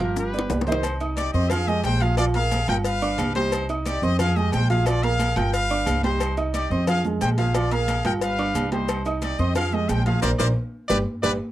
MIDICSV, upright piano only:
0, 0, Header, 1, 2, 480
1, 0, Start_track
1, 0, Key_signature, -3, "minor"
1, 0, Tempo, 335383
1, 1199, Time_signature, 4, 2, 24, 8
1, 16486, End_track
2, 0, Start_track
2, 0, Title_t, "Upright piano"
2, 0, Program_c, 0, 0
2, 0, Note_on_c, 0, 53, 80
2, 1, Note_on_c, 0, 65, 79
2, 3, Note_on_c, 0, 77, 83
2, 391, Note_off_c, 0, 53, 0
2, 394, Note_off_c, 0, 65, 0
2, 395, Note_off_c, 0, 77, 0
2, 482, Note_on_c, 0, 59, 71
2, 488, Note_on_c, 0, 71, 70
2, 491, Note_on_c, 0, 74, 74
2, 678, Note_off_c, 0, 59, 0
2, 681, Note_off_c, 0, 71, 0
2, 683, Note_off_c, 0, 74, 0
2, 720, Note_on_c, 0, 59, 73
2, 723, Note_on_c, 0, 71, 74
2, 728, Note_on_c, 0, 74, 68
2, 916, Note_off_c, 0, 59, 0
2, 919, Note_off_c, 0, 71, 0
2, 921, Note_off_c, 0, 74, 0
2, 963, Note_on_c, 0, 51, 87
2, 967, Note_on_c, 0, 63, 85
2, 973, Note_on_c, 0, 75, 84
2, 1158, Note_off_c, 0, 51, 0
2, 1160, Note_off_c, 0, 63, 0
2, 1164, Note_off_c, 0, 75, 0
2, 1442, Note_on_c, 0, 63, 77
2, 1445, Note_on_c, 0, 75, 75
2, 1447, Note_on_c, 0, 87, 77
2, 1834, Note_off_c, 0, 63, 0
2, 1836, Note_off_c, 0, 75, 0
2, 1838, Note_off_c, 0, 87, 0
2, 1920, Note_on_c, 0, 60, 80
2, 1923, Note_on_c, 0, 72, 76
2, 1928, Note_on_c, 0, 84, 75
2, 2116, Note_off_c, 0, 60, 0
2, 2118, Note_off_c, 0, 72, 0
2, 2121, Note_off_c, 0, 84, 0
2, 2161, Note_on_c, 0, 65, 71
2, 2163, Note_on_c, 0, 77, 77
2, 2170, Note_on_c, 0, 89, 77
2, 2357, Note_off_c, 0, 65, 0
2, 2358, Note_off_c, 0, 77, 0
2, 2362, Note_off_c, 0, 89, 0
2, 2396, Note_on_c, 0, 56, 77
2, 2402, Note_on_c, 0, 68, 76
2, 2405, Note_on_c, 0, 80, 76
2, 2791, Note_off_c, 0, 56, 0
2, 2795, Note_off_c, 0, 68, 0
2, 2796, Note_off_c, 0, 80, 0
2, 2879, Note_on_c, 0, 53, 90
2, 2884, Note_on_c, 0, 65, 95
2, 2887, Note_on_c, 0, 77, 93
2, 3076, Note_off_c, 0, 53, 0
2, 3079, Note_off_c, 0, 65, 0
2, 3080, Note_off_c, 0, 77, 0
2, 3123, Note_on_c, 0, 53, 85
2, 3128, Note_on_c, 0, 65, 85
2, 3132, Note_on_c, 0, 77, 86
2, 3318, Note_off_c, 0, 53, 0
2, 3321, Note_off_c, 0, 65, 0
2, 3324, Note_off_c, 0, 77, 0
2, 3361, Note_on_c, 0, 58, 73
2, 3365, Note_on_c, 0, 70, 77
2, 3369, Note_on_c, 0, 82, 73
2, 3754, Note_off_c, 0, 58, 0
2, 3756, Note_off_c, 0, 70, 0
2, 3758, Note_off_c, 0, 82, 0
2, 3842, Note_on_c, 0, 65, 78
2, 3844, Note_on_c, 0, 77, 78
2, 3850, Note_on_c, 0, 89, 78
2, 4234, Note_off_c, 0, 65, 0
2, 4236, Note_off_c, 0, 77, 0
2, 4239, Note_off_c, 0, 89, 0
2, 4319, Note_on_c, 0, 62, 81
2, 4325, Note_on_c, 0, 74, 83
2, 4328, Note_on_c, 0, 86, 80
2, 4713, Note_off_c, 0, 62, 0
2, 4716, Note_off_c, 0, 74, 0
2, 4718, Note_off_c, 0, 86, 0
2, 4803, Note_on_c, 0, 55, 78
2, 4805, Note_on_c, 0, 67, 78
2, 4812, Note_on_c, 0, 79, 81
2, 5195, Note_off_c, 0, 55, 0
2, 5196, Note_off_c, 0, 67, 0
2, 5200, Note_off_c, 0, 79, 0
2, 5285, Note_on_c, 0, 63, 74
2, 5291, Note_on_c, 0, 75, 79
2, 5296, Note_on_c, 0, 87, 82
2, 5676, Note_off_c, 0, 63, 0
2, 5680, Note_off_c, 0, 75, 0
2, 5683, Note_off_c, 0, 87, 0
2, 5762, Note_on_c, 0, 60, 80
2, 5768, Note_on_c, 0, 72, 80
2, 5770, Note_on_c, 0, 84, 81
2, 5958, Note_off_c, 0, 60, 0
2, 5962, Note_off_c, 0, 72, 0
2, 5963, Note_off_c, 0, 84, 0
2, 6004, Note_on_c, 0, 65, 77
2, 6008, Note_on_c, 0, 77, 72
2, 6013, Note_on_c, 0, 89, 75
2, 6199, Note_off_c, 0, 65, 0
2, 6201, Note_off_c, 0, 77, 0
2, 6204, Note_off_c, 0, 89, 0
2, 6243, Note_on_c, 0, 56, 80
2, 6247, Note_on_c, 0, 68, 79
2, 6251, Note_on_c, 0, 80, 80
2, 6635, Note_off_c, 0, 56, 0
2, 6637, Note_off_c, 0, 68, 0
2, 6640, Note_off_c, 0, 80, 0
2, 6725, Note_on_c, 0, 53, 89
2, 6728, Note_on_c, 0, 65, 88
2, 6730, Note_on_c, 0, 77, 95
2, 6919, Note_off_c, 0, 53, 0
2, 6922, Note_off_c, 0, 65, 0
2, 6922, Note_off_c, 0, 77, 0
2, 6963, Note_on_c, 0, 53, 92
2, 6969, Note_on_c, 0, 65, 86
2, 6972, Note_on_c, 0, 77, 86
2, 7159, Note_off_c, 0, 53, 0
2, 7162, Note_off_c, 0, 65, 0
2, 7164, Note_off_c, 0, 77, 0
2, 7199, Note_on_c, 0, 58, 80
2, 7204, Note_on_c, 0, 70, 78
2, 7208, Note_on_c, 0, 82, 80
2, 7593, Note_off_c, 0, 58, 0
2, 7596, Note_off_c, 0, 70, 0
2, 7598, Note_off_c, 0, 82, 0
2, 7683, Note_on_c, 0, 65, 77
2, 7686, Note_on_c, 0, 77, 80
2, 7689, Note_on_c, 0, 89, 82
2, 8076, Note_off_c, 0, 65, 0
2, 8077, Note_off_c, 0, 77, 0
2, 8079, Note_off_c, 0, 89, 0
2, 8163, Note_on_c, 0, 62, 73
2, 8166, Note_on_c, 0, 74, 78
2, 8171, Note_on_c, 0, 86, 76
2, 8555, Note_off_c, 0, 62, 0
2, 8557, Note_off_c, 0, 74, 0
2, 8560, Note_off_c, 0, 86, 0
2, 8639, Note_on_c, 0, 55, 83
2, 8645, Note_on_c, 0, 67, 82
2, 8650, Note_on_c, 0, 79, 81
2, 9033, Note_off_c, 0, 55, 0
2, 9037, Note_off_c, 0, 67, 0
2, 9040, Note_off_c, 0, 79, 0
2, 9121, Note_on_c, 0, 63, 76
2, 9123, Note_on_c, 0, 75, 78
2, 9127, Note_on_c, 0, 87, 75
2, 9514, Note_off_c, 0, 63, 0
2, 9515, Note_off_c, 0, 75, 0
2, 9518, Note_off_c, 0, 87, 0
2, 9603, Note_on_c, 0, 60, 78
2, 9607, Note_on_c, 0, 72, 75
2, 9612, Note_on_c, 0, 84, 74
2, 9799, Note_off_c, 0, 60, 0
2, 9801, Note_off_c, 0, 72, 0
2, 9804, Note_off_c, 0, 84, 0
2, 9846, Note_on_c, 0, 65, 76
2, 9850, Note_on_c, 0, 77, 76
2, 9855, Note_on_c, 0, 89, 77
2, 10040, Note_off_c, 0, 65, 0
2, 10043, Note_off_c, 0, 77, 0
2, 10046, Note_off_c, 0, 89, 0
2, 10084, Note_on_c, 0, 56, 74
2, 10087, Note_on_c, 0, 68, 74
2, 10091, Note_on_c, 0, 80, 77
2, 10476, Note_off_c, 0, 56, 0
2, 10478, Note_off_c, 0, 68, 0
2, 10480, Note_off_c, 0, 80, 0
2, 10558, Note_on_c, 0, 53, 95
2, 10562, Note_on_c, 0, 65, 89
2, 10569, Note_on_c, 0, 77, 96
2, 10756, Note_off_c, 0, 53, 0
2, 10758, Note_off_c, 0, 65, 0
2, 10762, Note_off_c, 0, 77, 0
2, 10801, Note_on_c, 0, 53, 81
2, 10806, Note_on_c, 0, 65, 87
2, 10808, Note_on_c, 0, 77, 85
2, 10997, Note_off_c, 0, 53, 0
2, 11000, Note_off_c, 0, 65, 0
2, 11002, Note_off_c, 0, 77, 0
2, 11041, Note_on_c, 0, 58, 79
2, 11045, Note_on_c, 0, 70, 74
2, 11047, Note_on_c, 0, 82, 75
2, 11434, Note_off_c, 0, 58, 0
2, 11436, Note_off_c, 0, 70, 0
2, 11438, Note_off_c, 0, 82, 0
2, 11520, Note_on_c, 0, 65, 81
2, 11522, Note_on_c, 0, 77, 79
2, 11529, Note_on_c, 0, 89, 79
2, 11913, Note_off_c, 0, 65, 0
2, 11915, Note_off_c, 0, 77, 0
2, 11919, Note_off_c, 0, 89, 0
2, 12001, Note_on_c, 0, 62, 81
2, 12004, Note_on_c, 0, 74, 77
2, 12010, Note_on_c, 0, 86, 79
2, 12394, Note_off_c, 0, 62, 0
2, 12396, Note_off_c, 0, 74, 0
2, 12399, Note_off_c, 0, 86, 0
2, 12478, Note_on_c, 0, 55, 80
2, 12481, Note_on_c, 0, 67, 83
2, 12485, Note_on_c, 0, 79, 83
2, 12872, Note_off_c, 0, 55, 0
2, 12874, Note_off_c, 0, 67, 0
2, 12876, Note_off_c, 0, 79, 0
2, 12963, Note_on_c, 0, 63, 82
2, 12969, Note_on_c, 0, 75, 76
2, 12972, Note_on_c, 0, 87, 79
2, 13355, Note_off_c, 0, 63, 0
2, 13358, Note_off_c, 0, 75, 0
2, 13360, Note_off_c, 0, 87, 0
2, 13444, Note_on_c, 0, 60, 80
2, 13446, Note_on_c, 0, 72, 74
2, 13452, Note_on_c, 0, 84, 79
2, 13639, Note_off_c, 0, 60, 0
2, 13640, Note_off_c, 0, 72, 0
2, 13643, Note_off_c, 0, 84, 0
2, 13686, Note_on_c, 0, 65, 77
2, 13690, Note_on_c, 0, 77, 80
2, 13695, Note_on_c, 0, 89, 71
2, 13880, Note_off_c, 0, 65, 0
2, 13882, Note_off_c, 0, 77, 0
2, 13885, Note_off_c, 0, 89, 0
2, 13923, Note_on_c, 0, 56, 78
2, 13924, Note_on_c, 0, 68, 76
2, 13929, Note_on_c, 0, 80, 79
2, 14315, Note_off_c, 0, 56, 0
2, 14315, Note_off_c, 0, 68, 0
2, 14319, Note_off_c, 0, 80, 0
2, 14403, Note_on_c, 0, 53, 91
2, 14407, Note_on_c, 0, 65, 93
2, 14412, Note_on_c, 0, 77, 88
2, 14598, Note_off_c, 0, 53, 0
2, 14600, Note_off_c, 0, 65, 0
2, 14603, Note_off_c, 0, 77, 0
2, 14641, Note_on_c, 0, 72, 98
2, 14641, Note_on_c, 0, 74, 96
2, 14642, Note_on_c, 0, 70, 97
2, 14793, Note_off_c, 0, 74, 0
2, 14794, Note_off_c, 0, 70, 0
2, 14794, Note_off_c, 0, 72, 0
2, 14877, Note_on_c, 0, 72, 96
2, 14878, Note_on_c, 0, 70, 98
2, 14878, Note_on_c, 0, 74, 96
2, 15031, Note_off_c, 0, 72, 0
2, 15032, Note_off_c, 0, 70, 0
2, 15032, Note_off_c, 0, 74, 0
2, 15592, Note_on_c, 0, 74, 95
2, 15593, Note_on_c, 0, 67, 98
2, 15593, Note_on_c, 0, 71, 98
2, 15748, Note_off_c, 0, 74, 0
2, 15749, Note_off_c, 0, 67, 0
2, 15749, Note_off_c, 0, 71, 0
2, 16072, Note_on_c, 0, 74, 107
2, 16073, Note_on_c, 0, 71, 96
2, 16075, Note_on_c, 0, 67, 100
2, 16229, Note_off_c, 0, 71, 0
2, 16229, Note_off_c, 0, 74, 0
2, 16230, Note_off_c, 0, 67, 0
2, 16486, End_track
0, 0, End_of_file